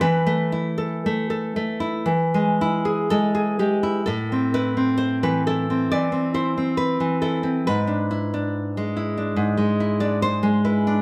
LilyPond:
\new Staff \with { instrumentName = "Nylon-string guitar" } { \time 4/4 \key a \minor \tempo 4 = 66 << { b'2. a'8 g'8 | a'8 b'8 c''16 b'16 a'8 d''8 c''8 b'8 a'8 | b'2~ b'8. d''16 c''8 b'8 | } \\ { e16 a16 e'16 a'16 a16 a'16 a16 e'16 e16 gis16 e'16 gis'16 gis16 gis'16 gis16 e'16 | a,16 c'16 e'16 c'8 e16 e'16 c'16 e16 c'16 e'16 c'8 e16 e'16 c'16 | gis,16 d'16 e'16 d'8 gis16 e'16 d'16 gis,16 gis16 e'16 d'8 gis16 e'16 d'16 | } >> }